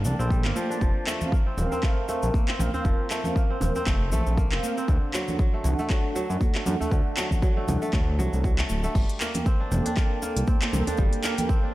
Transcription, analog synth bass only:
0.05 0.14 C2 medium
0.19 0.46 A#1 loud
0.45 0.52 G1 medium
0.81 0.91 F1 loud
1.57 1.67 D#1 loud
2.23 2.30 A#1 medium
2.59 2.69 A#1 loud
2.85 2.94 F1 medium
3.61 3.71 D#1 loud
3.87 4.14 F1 loud
4.12 4.22 A#1 medium
4.26 4.53 A#1 loud
4.52 4.59 F1 medium
4.88 4.98 D2 loud
5.64 5.74 C2 loud
6.30 6.37 F#2 medium
6.66 6.75 F#2 loud
6.91 7.01 D2 loud
7.68 7.77 C2 loud
7.93 8.20 D2 loud
8.18 8.28 C2 loud
8.33 8.63 C2 medium
8.70 8.88 D1 medium
8.95 9.04 G1 loud
9.71 9.81 F1 loud
10.36 10.44 C2 medium
10.73 10.82 C2 loud
10.98 11.08 G1 loud

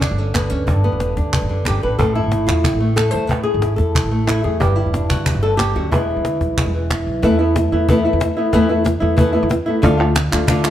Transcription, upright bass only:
0.11 0.48 G1 medium
0.52 0.69 D2 medium
0.68 0.90 G1 medium
0.92 1.15 E1 medium
1.17 1.39 D2 medium
1.42 1.49 G1 medium
1.50 1.65 F#1 medium
1.66 1.81 G1 medium
1.83 1.99 A1 medium
1.99 2.21 A1 medium
2.24 2.46 G#1 medium
2.48 2.70 E2 medium
2.73 3.10 A1 medium
3.13 3.30 E2 medium
3.30 3.52 A1 medium
3.54 3.77 G#1 medium
3.79 4.01 E2 medium
4.03 4.40 A1 medium
4.44 4.62 E2 medium
4.60 4.83 G1 medium
4.86 5.08 E1 medium
5.11 5.33 D2 medium
5.35 5.72 G1 medium
5.76 5.93 D2 medium
5.91 6.14 E1 medium
6.16 6.39 D2 medium
6.41 6.63 B1 medium
6.66 7.03 E1 medium
7.07 7.21 B1 medium
7.23 7.68 E2 medium
7.72 8.09 E2 medium
8.13 8.27 E2 medium
8.53 8.98 E2 medium
9.02 9.39 E2 medium
9.43 9.57 E2 medium
9.83 10.28 D2 medium
10.33 10.69 D2 medium

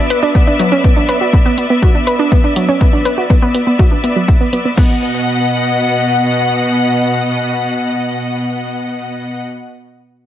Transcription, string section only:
0.00 4.74 B3 medium
0.00 4.74 B4 medium
0.00 4.74 D5 medium
0.00 4.73 E5 medium
4.77 9.43 B2 medium
4.77 9.43 B3 medium
4.77 9.43 D#5 medium
4.77 9.43 F#5 medium

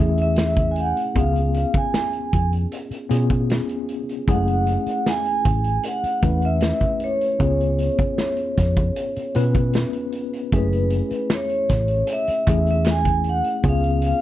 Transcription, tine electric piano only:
0.00 1.17 A3 medium
0.00 1.16 C#4 medium
0.00 1.17 E4 medium
0.00 1.16 G#4 medium
1.15 2.30 B3 medium
1.15 2.31 C#4 medium
1.15 2.31 F4 medium
1.15 2.31 G#4 medium
3.10 3.96 B3 medium
3.10 3.96 C#4 medium
3.10 3.97 F4 medium
3.10 3.97 G#4 medium
4.27 4.34 G#3 medium
4.27 5.43 C#4 medium
4.27 5.43 E4 medium
4.27 5.43 G#4 medium
4.34 5.46 A3 medium
6.22 7.09 A3 medium
6.22 7.09 C#4 medium
6.22 7.09 E4 medium
6.22 7.10 B4 medium
7.39 8.54 B3 medium
7.39 8.55 C#4 medium
7.39 8.55 F4 medium
7.39 8.55 G#4 medium
9.35 10.21 B3 medium
9.35 10.21 C#4 medium
9.35 10.21 F4 medium
9.35 10.22 B4 medium
10.53 11.67 A3 medium
10.53 11.67 C#4 medium
10.53 11.67 E4 medium
10.53 11.68 G#4 medium
12.48 13.33 A3 medium
12.48 13.34 C#4 medium
12.48 13.34 E4 medium
12.48 13.34 G#4 medium
13.63 14.21 B3 medium
13.63 14.21 C#4 medium
13.63 14.21 F4 medium
13.63 14.21 G#4 medium

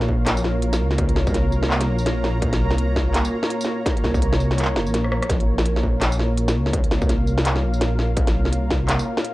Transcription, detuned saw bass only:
0.00 0.82 A#1 loud
0.81 1.18 C#2 medium
1.16 1.90 C2 medium
1.88 2.62 A#1 medium
2.60 3.23 C2 medium
4.04 4.77 C2 medium
4.75 4.87 F1 loud
4.86 5.21 A#1 loud
5.29 6.57 A#1 loud
6.55 6.93 C#2 medium
6.91 7.64 C2 medium
7.63 8.36 A#1 medium
8.35 8.98 C2 medium

